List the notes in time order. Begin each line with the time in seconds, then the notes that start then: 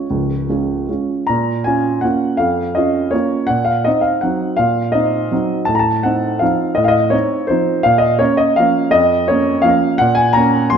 Already playing: C#5
0.10 C#1 C#2
0.49 G#3 C#4 F4
0.89 G#3 C#4 F4
1.27 A#2 A#5
1.64 C#4 F4 G#5
2.01 A#3 C#4 F4 F#5
2.37 F2 F5
2.75 C#4 F4 D#5
3.11 A#3 C#4 F4 C#5
3.47 A#2 F#5
3.65 F5
3.85 C4 D#4 D#5
4.01 F5
4.21 F#3 C4 D#4 F#5
4.57 A#2 F5
4.92 C4 D#4 D#5
5.31 F#3 C4 D#4
5.65 A2 A5
5.75 A#5
5.79 A5
6.03 C4 D#4 F#5
6.39 F3 C4 D#4 F5
6.75 A2 D#5
6.84 D#5 F5
7.10 C4 D#4 C#5
7.47 F3 C4 D#4 C5
7.83 A#2 F5
7.98 D#5
8.19 A#3 C#4 C#5
8.37 D#5
8.56 F3 A#3 C#4 F5
8.91 F2 D#5
9.28 A#3 C#4 C#5
9.62 F3 A#3 C#4 F5
9.98 A#2 F#5
10.15 G#5
10.33 A#3 C#4 A#5
10.70 F#3 A#3 C#4 C6